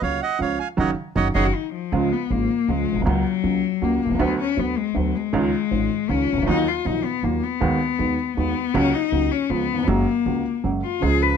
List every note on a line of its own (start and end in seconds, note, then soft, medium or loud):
0.01 0.17 C#2 soft
0.01 0.18 C#2 medium
0.01 0.17 C#3 soft
0.01 0.17 F#3 soft
0.01 0.17 A#3 soft
0.01 0.18 F#4 soft
0.01 0.20 C#5 medium
0.01 0.21 F5 medium
0.22 0.39 D#5 medium
0.22 0.41 F#5 medium
0.39 0.55 C#2 medium
0.39 0.56 C#2 medium
0.39 0.55 C#3 medium
0.39 0.55 F3 soft
0.39 0.55 G#3 soft
0.39 0.55 F4 soft
0.39 0.59 C#5 medium
0.39 0.59 F5 medium
0.59 0.69 F5 medium
0.59 0.68 G#5 medium
0.77 0.92 F#1 medium
0.77 0.89 C#3 loud
0.77 0.90 D#3 medium
0.77 0.89 F#3 medium
0.77 0.91 C#5 medium
0.77 0.91 D#5 medium
0.77 0.91 F#5 medium
1.15 1.30 F#1 medium
1.15 1.28 C#3 medium
1.15 1.28 D#3 medium
1.15 1.28 F#3 medium
1.15 1.28 C#5 medium
1.15 1.28 D#5 medium
1.15 1.28 F#5 medium
1.34 1.49 F#1 medium
1.34 1.47 C#3 medium
1.34 1.47 D#3 medium
1.34 1.47 F#3 medium
1.34 1.46 G#4 medium
1.34 1.47 C#5 medium
1.34 1.47 D#5 medium
1.34 1.47 F#5 medium
1.44 1.56 F#4 medium
1.54 1.73 D#4 medium
1.73 1.95 F3 medium
1.92 2.08 C#2 medium
1.92 2.08 C#3 medium
1.92 2.08 F3 medium
1.92 2.08 G#3 medium
1.92 2.14 G#3 medium
1.92 2.08 F4 medium
2.13 2.33 B3 medium
2.30 2.46 G#1 soft
2.30 2.46 G#1 medium
2.30 2.46 G#2 soft
2.30 2.46 C#3 soft
2.30 2.46 F3 soft
2.30 2.46 G#3 soft
2.30 2.71 A#3 medium
2.30 2.46 F4 soft
2.68 2.84 C#2 medium
2.68 2.84 C#3 medium
2.68 2.84 F3 soft
2.68 2.84 G#3 soft
2.68 3.07 G#3 medium
2.68 2.84 F4 soft
2.92 2.97 A#1 soft
2.92 2.96 A#1 soft
2.92 3.01 B1 soft
2.97 3.02 B1 soft
3.01 3.06 C2 medium
3.01 3.22 C#3 medium
3.05 3.22 C#2 medium
3.05 3.22 F#3 medium
3.05 3.85 F#3 loud
3.05 3.22 A#3 medium
3.05 3.22 F#4 medium
3.43 3.59 C#2 soft
3.43 3.60 C#2 medium
3.43 3.60 C#3 medium
3.43 3.60 F#3 soft
3.43 3.60 A#3 soft
3.43 3.60 F#4 soft
3.82 3.98 C#2 medium
3.82 3.98 C#3 medium
3.82 3.98 F#3 soft
3.82 3.98 A#3 soft
3.82 4.22 A#3 medium
3.82 3.98 F#4 medium
4.05 4.10 B1 soft
4.10 4.15 C2 medium
4.10 4.14 C2 soft
4.15 4.19 C#2 medium
4.19 4.35 D2 medium
4.19 4.35 D3 medium
4.19 4.35 F#3 medium
4.19 4.35 B3 medium
4.19 4.39 B3 medium
4.19 4.35 F#4 medium
4.40 4.61 C#4 medium
4.57 4.73 D2 soft
4.57 4.73 D2 medium
4.57 4.73 D3 soft
4.57 4.73 F#3 soft
4.57 4.73 B3 soft
4.57 4.79 B3 medium
4.57 4.73 F#4 soft
4.77 4.98 G#3 medium
4.95 5.11 D2 medium
4.95 5.11 D3 medium
4.95 5.11 F#3 soft
4.95 5.17 F#3 medium
4.95 5.11 B3 soft
4.95 5.11 F#4 medium
5.16 6.12 G#3 medium
5.33 5.49 C#2 medium
5.33 5.49 C#3 medium
5.33 5.49 D#3 medium
5.33 5.49 G#3 medium
5.33 5.49 C#4 medium
5.33 5.49 F4 medium
5.71 5.87 G#1 soft
5.71 5.87 G#1 medium
5.71 5.87 G#2 soft
5.71 5.87 D#3 soft
5.71 5.87 G#3 soft
5.71 5.87 C#4 soft
5.71 5.87 F4 soft
6.09 6.25 C#2 medium
6.09 6.25 C#3 soft
6.09 6.25 D#3 medium
6.09 6.25 G#3 soft
6.09 6.25 C#4 soft
6.09 6.48 C#4 medium
6.09 6.25 F4 medium
6.33 6.37 C2 soft
6.33 6.38 C2 soft
6.38 6.42 C#2 medium
6.42 6.47 D2 medium
6.47 6.63 D#2 medium
6.47 6.63 D#3 medium
6.47 6.63 F#3 medium
6.47 6.63 A#3 medium
6.47 6.69 D#4 loud
6.47 6.63 F4 medium
6.68 6.87 F4 medium
6.85 7.01 A#1 soft
6.85 7.01 A#1 medium
6.85 7.01 A#2 medium
6.85 7.01 D#3 soft
6.85 7.01 F#3 soft
6.85 7.01 A#3 soft
6.85 7.06 D#4 medium
6.85 7.01 F4 soft
7.05 7.26 B3 medium
7.23 7.39 D#2 medium
7.23 7.39 D#3 medium
7.23 7.39 F#3 soft
7.23 7.39 A#3 soft
7.23 7.44 A#3 medium
7.23 7.39 F4 soft
7.43 8.36 B3 medium
7.61 7.77 D#2 medium
7.61 7.77 D#3 medium
7.61 7.77 G#3 medium
7.61 7.77 B3 medium
7.61 7.77 F#4 medium
7.99 8.15 D#2 soft
7.99 8.15 D#2 medium
7.99 8.15 D#3 soft
7.99 8.15 G#3 soft
7.99 8.15 B3 soft
7.99 8.15 F#4 soft
8.37 8.53 D#2 medium
8.37 8.53 D#3 medium
8.37 8.53 G#3 soft
8.37 8.76 B3 medium
8.37 8.53 B3 soft
8.37 8.53 F#4 medium
8.74 8.90 C#2 medium
8.74 8.90 C#3 medium
8.74 8.90 F#3 medium
8.74 8.90 A#3 medium
8.74 8.95 C#4 loud
8.74 8.90 F#4 medium
8.94 9.33 D#4 loud
9.12 9.28 C#2 medium
9.12 9.28 C#3 medium
9.12 9.28 F#3 soft
9.12 9.28 A#3 soft
9.12 9.28 F#4 soft
9.32 9.51 C#4 medium
9.49 9.66 C#2 medium
9.49 9.66 C#3 medium
9.49 9.65 F3 soft
9.49 9.66 G#3 soft
9.49 9.89 B3 medium
9.49 9.66 F4 medium
9.74 9.78 D#2 soft
9.78 9.83 E2 medium
9.83 9.88 F2 medium
9.87 10.03 F#1 medium
9.87 10.03 F#2 medium
9.87 10.03 C#3 medium
9.87 10.04 F#3 medium
9.87 10.03 G#3 medium
9.87 10.63 A#3 loud
9.87 10.03 A#3 medium
9.87 10.03 F#4 medium
10.26 10.42 C#2 medium
10.26 10.42 C#3 soft
10.26 10.42 G#3 soft
10.26 10.42 A#3 soft
10.26 10.42 F#4 soft
10.64 10.80 F#1 medium
10.64 10.80 F#2 medium
10.64 10.80 C#3 soft
10.64 10.80 F#3 medium
10.64 10.80 G#3 soft
10.64 10.80 A#3 soft
10.64 10.80 F#4 medium
10.83 11.04 F4 medium
11.00 11.37 C#2 medium
11.00 11.01 C#3 medium
11.00 11.37 C#3 medium
11.00 11.37 F3 medium
11.00 11.37 G#3 medium
11.00 11.24 G#4 medium
11.04 11.37 F4 medium
11.22 11.37 B4 medium